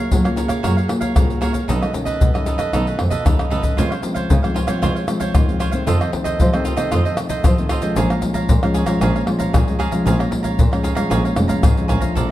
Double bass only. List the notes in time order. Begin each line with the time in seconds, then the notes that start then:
0.12 F#3
0.64 F#2
1.16 C2
1.69 B1
2.21 B2
2.73 B1
2.98 F2
3.26 D#2
3.51 C#2
3.78 C#2
4.31 C#3
4.83 C#2
5.35 D#2
5.87 F2
6.40 F3
6.92 F2
7.44 F3
7.97 A#1
8.49 A#2
9.02 A#1
9.54 A#2
10.06 A#1
10.59 A#2
11.12 A#1
11.37 F1
11.64 G#1
11.90 A#1
12.16 A#1